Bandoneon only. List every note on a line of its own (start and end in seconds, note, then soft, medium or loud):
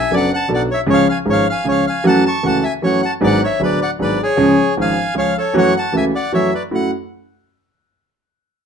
0.00 0.12 E5 medium
0.00 0.15 G#5 medium
0.14 0.30 D5 medium
0.14 0.32 F#5 medium
0.34 0.50 F#5 medium
0.34 0.51 A5 medium
0.54 0.61 D5 medium
0.54 0.63 F#5 medium
0.71 0.79 C#5 medium
0.71 0.81 E5 medium
0.90 1.07 C#5 medium
0.90 1.08 F5 loud
1.09 1.18 F5 medium
1.09 1.19 G#5 medium
1.30 1.47 C#5 medium
1.30 1.48 F5 medium
1.49 1.66 F5 medium
1.49 1.68 G#5 medium
1.69 1.86 C#5 medium
1.69 1.85 F5 medium
1.87 2.05 F5 medium
1.87 2.06 G#5 medium
2.06 2.24 F#5 medium
2.06 2.25 A5 medium
2.26 2.44 A5 medium
2.26 2.46 C#6 medium
2.46 2.63 F#5 medium
2.46 2.64 A5 medium
2.63 2.72 E5 medium
2.63 2.74 G#5 medium
2.84 3.02 C#5 medium
2.84 3.01 F#5 medium
3.03 3.11 F#5 medium
3.03 3.14 A5 medium
3.24 3.41 D5 medium
3.24 3.42 F#5 medium
3.44 3.61 C#5 medium
3.44 3.62 E5 medium
3.63 3.80 B4 medium
3.63 3.80 D5 medium
3.81 3.90 D5 medium
3.81 3.91 F#5 medium
4.02 4.19 B4 medium
4.02 4.21 D5 medium
4.23 4.74 G#4 medium
4.23 4.75 C#5 medium
4.81 5.15 F5 medium
4.81 5.15 G#5 medium
5.18 5.34 C#5 medium
5.18 5.37 F5 medium
5.38 5.54 A4 medium
5.38 5.56 C#5 medium
5.57 5.73 C#5 medium
5.57 5.75 F#5 loud
5.77 5.93 F#5 medium
5.77 5.96 A5 medium
5.96 6.04 E5 medium
5.96 6.05 G#5 medium
6.15 6.32 D5 medium
6.15 6.32 F#5 medium
6.34 6.51 C#5 medium
6.34 6.54 E5 medium
6.54 6.63 B4 soft
6.54 6.63 D5 medium
6.75 6.91 F#5 medium